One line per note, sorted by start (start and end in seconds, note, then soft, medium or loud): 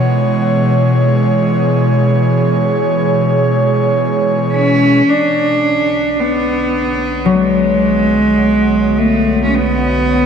0.00 5.07 B2 medium
0.00 5.06 E3 medium
0.00 5.07 G#3 medium
0.00 5.06 B3 medium
0.00 8.13 G#4 medium
0.00 10.26 C#5 medium
0.00 4.35 F#5 medium
4.52 5.10 C#4 medium
5.07 10.26 B1 medium
5.07 10.26 D3 medium
5.07 10.26 B3 medium
5.07 6.22 D4 medium
5.56 10.26 B3 medium
6.20 7.34 B3 medium
6.75 10.26 F#4 medium
7.25 10.26 F#3 medium
7.32 9.00 G#3 medium
8.98 9.44 A3 medium
9.45 9.56 C#4 medium
9.55 10.26 B3 medium